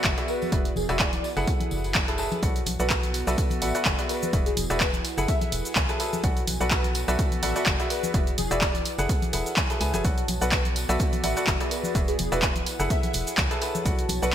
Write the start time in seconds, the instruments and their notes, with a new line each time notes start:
Already playing: ambient pad B3 F#4 D5, grand piano F#4 A4 B4 D5 F#5
0.04 fm bass F#1, kick, clap, closed hi-hat, tambourine, high conga
0.18 grand piano F#4 G#4 B4 D5 E5, closed hi-hat
0.28 ambient pad E4, digital synth lead B4, tambourine
0.42 tambourine, high conga
0.52 fm bass E1, grand piano F#4 G#4 B4 D5 E5, kick, closed hi-hat
0.65 closed hi-hat
0.76 fm bass E1, digital synth lead G#4, tambourine, high conga
0.89 fm bass E1, grand piano F#4 G#4 B4 D5 E5, digital synth lead D5, closed hi-hat, tambourine
0.99 kick, clap, closed hi-hat
1.13 closed hi-hat, high conga
1.24 ambient pad F#4, tambourine
1.37 fm bass F#1, grand piano G#4 A4 B4 E5 F#5, closed hi-hat, tambourine
1.47 kick, closed hi-hat, tambourine
1.60 closed hi-hat, high conga
1.71 fm bass F#1, tambourine
1.84 closed hi-hat, tambourine
1.95 kick, clap, closed hi-hat, tambourine, high conga
2.08 grand piano G#4 A4 B4 E5 A5, closed hi-hat
2.18 grand piano G#4 A4 B4 E5 A5, tambourine
2.32 closed hi-hat, tambourine, high conga
2.42 fm bass B1, ambient pad B3, grand piano F#4 A4 B4 D5 F#5, kick, closed hi-hat, tambourine, cabasa
2.56 closed hi-hat, cabasa
2.66 fm bass B1, open hi-hat, tambourine, high conga
2.79 fm bass B1, grand piano F#4 A4 B4 D5 F#5, digital synth lead B4, tambourine, cabasa
2.90 digital synth lead B4, kick, clap, closed hi-hat, tambourine, cabasa
3.03 closed hi-hat, high conga, cabasa
3.14 ambient pad D5, open hi-hat, tambourine
3.27 fm bass B1, grand piano F#4 A4 B4 D5 E5, tambourine, cabasa
3.38 kick, closed hi-hat, tambourine, cabasa
3.50 closed hi-hat, high conga, cabasa
3.62 fm bass A1, grand piano F#4 A4 B4 D5 F#5, digital synth lead E5, open hi-hat, tambourine
3.74 grand piano F#4 A4 B4 D5 F#5, digital synth lead E5, closed hi-hat, tambourine, cabasa
3.85 fm bass F#1, kick, clap, closed hi-hat, tambourine, high conga, cabasa
3.99 grand piano F#4 G#4 B4 D5 E5, closed hi-hat, cabasa
4.09 ambient pad E4, digital synth lead B4, open hi-hat, tambourine
4.22 ambient pad B4, tambourine, high conga, cabasa
4.33 fm bass E1, grand piano F#4 G#4 B4 D5 E5, kick, closed hi-hat, tambourine, cabasa
4.46 digital synth lead G#4, closed hi-hat, cabasa
4.57 fm bass E1, open hi-hat, tambourine, high conga
4.70 fm bass E1, grand piano F#4 G#4 B4 D5 E5, digital synth lead B4, tambourine, cabasa
4.80 kick, clap, closed hi-hat, cabasa
4.93 closed hi-hat, high conga, cabasa
5.05 ambient pad F#4, open hi-hat, tambourine
5.18 fm bass F#1, grand piano G#4 A4 B4 E5 F#5, tambourine, cabasa
5.28 digital synth lead E5, kick, closed hi-hat, tambourine, cabasa
5.41 digital synth lead E5, closed hi-hat, high conga, cabasa
5.50 fm bass E1, ambient pad G#5, open hi-hat, tambourine
5.65 closed hi-hat, tambourine, cabasa
5.75 fm bass C#2, kick, clap, closed hi-hat, tambourine, high conga, cabasa
5.89 grand piano G#4 A4 B4 E5 A5, closed hi-hat, cabasa
6.00 grand piano G#4 A4 B4 E5 A5, open hi-hat, tambourine
6.13 tambourine, high conga, cabasa
6.23 fm bass B1, ambient pad B3, grand piano F#4 A4 B4 D5 F#5, kick, closed hi-hat, tambourine, cabasa
6.37 closed hi-hat, cabasa
6.47 fm bass B1, open hi-hat, tambourine, high conga
6.60 fm bass B1, grand piano F#4 A4 B4 D5 F#5, digital synth lead B4, tambourine, cabasa
6.71 digital synth lead B4, kick, clap, closed hi-hat, tambourine, cabasa
6.84 closed hi-hat, high conga, cabasa
6.95 open hi-hat, tambourine
6.99 ambient pad D5
7.08 fm bass B1, grand piano F#4 A4 B4 D5 E5, tambourine, cabasa
7.19 kick, closed hi-hat, tambourine, cabasa
7.32 closed hi-hat, high conga, cabasa
7.43 fm bass A1, grand piano F#4 A4 B4 D5 F#5, digital synth lead E5, open hi-hat, tambourine
7.56 grand piano F#4 A4 B4 D5 F#5, digital synth lead E5, closed hi-hat, tambourine, cabasa
7.66 fm bass F#1, kick, clap, closed hi-hat, tambourine, high conga, cabasa
7.80 grand piano F#4 G#4 B4 D5 E5, closed hi-hat, cabasa
7.90 ambient pad E4, digital synth lead B4, open hi-hat, tambourine
8.03 tambourine, high conga, cabasa
8.14 fm bass E1, grand piano F#4 G#4 B4 D5 E5, kick, closed hi-hat, tambourine, cabasa
8.22 ambient pad B4
8.27 closed hi-hat, cabasa
8.38 fm bass E1, digital synth lead G#4, open hi-hat, tambourine, high conga
8.51 fm bass E1, grand piano F#4 G#4 B4 D5 E5, digital synth lead D5, closed hi-hat, tambourine, cabasa
8.61 kick, clap, closed hi-hat, cabasa
8.75 closed hi-hat, high conga, cabasa
8.85 ambient pad F#4, open hi-hat, tambourine
8.98 fm bass F#1, grand piano G#4 A4 B4 E5 F#5, closed hi-hat, tambourine, cabasa
9.09 kick, closed hi-hat, tambourine, cabasa
9.22 closed hi-hat, high conga, cabasa
9.33 fm bass E1, grand piano G#4 A4 B4 E5 F#5, ambient pad A5, open hi-hat, tambourine
9.46 closed hi-hat, tambourine, cabasa
9.56 kick, clap, closed hi-hat, tambourine, high conga, cabasa
9.70 grand piano G#4 A4 B4 E5 A5, closed hi-hat, cabasa
9.81 fm bass C#2, grand piano G#4 A4 B4 E5 G#5, open hi-hat, tambourine
9.93 fm bass F#1, grand piano G#4 A4 B4 E5 G#5, closed hi-hat, tambourine, high conga, cabasa
10.05 fm bass B1, ambient pad B3, grand piano F#4 A4 B4 D5 F#5, kick, closed hi-hat, tambourine, cabasa
10.18 ambient pad D5, closed hi-hat, cabasa
10.28 fm bass B1, open hi-hat, tambourine, high conga
10.41 fm bass B1, grand piano F#4 A4 B4 D5 F#5, digital synth lead B4, tambourine, cabasa
10.52 digital synth lead B4, kick, clap, closed hi-hat, cabasa
10.65 closed hi-hat, high conga, cabasa
10.76 open hi-hat, tambourine
10.89 fm bass B1, grand piano F#4 A4 B4 D5 E5, tambourine, cabasa
10.99 kick, closed hi-hat, tambourine, cabasa
11.12 closed hi-hat, high conga, cabasa
11.24 fm bass A1, grand piano F#4 A4 B4 D5 F#5, digital synth lead E5, open hi-hat, tambourine
11.37 grand piano F#4 A4 B4 D5 F#5, digital synth lead E5, closed hi-hat, tambourine, cabasa
11.47 fm bass F#1, kick, clap, closed hi-hat, tambourine, high conga, cabasa
11.60 grand piano F#4 G#4 B4 D5 E5, closed hi-hat, cabasa
11.71 ambient pad E4, digital synth lead B4, open hi-hat, tambourine
11.84 tambourine, high conga, cabasa
11.95 fm bass E1, grand piano F#4 G#4 B4 D5 E5, ambient pad B4, kick, closed hi-hat, tambourine, cabasa
12.05 digital synth lead G#4, ambient pad F#5, closed hi-hat, cabasa
12.19 fm bass E1, open hi-hat, tambourine, high conga
12.32 fm bass E1, grand piano F#4 G#4 B4 D5 E5, digital synth lead B4, tambourine, cabasa
12.42 kick, clap, closed hi-hat, tambourine, cabasa
12.55 closed hi-hat, high conga, cabasa
12.66 ambient pad F#4, open hi-hat, tambourine
12.80 fm bass F#1, grand piano G#4 A4 B4 E5 F#5, tambourine, cabasa
12.90 digital synth lead E5, kick, closed hi-hat, tambourine, cabasa
13.03 digital synth lead E5, closed hi-hat, high conga, cabasa
13.13 fm bass E1, open hi-hat, tambourine
13.21 ambient pad A5
13.27 closed hi-hat, tambourine, cabasa
13.37 fm bass C#2, kick, clap, closed hi-hat, tambourine, high conga, cabasa
13.51 grand piano G#4 A4 B4 E5 A5, closed hi-hat, cabasa
13.61 grand piano G#4 A4 B4 E5 A5, open hi-hat, tambourine
13.75 tambourine, high conga, cabasa
13.85 fm bass B1, ambient pad B3, grand piano F#4 A4 B4 D5 F#5, kick, closed hi-hat, tambourine, cabasa
13.99 closed hi-hat, cabasa
14.09 fm bass B1, open hi-hat, tambourine, high conga
14.22 fm bass B1, grand piano F#4 A4 B4 D5 F#5, digital synth lead B4, tambourine, cabasa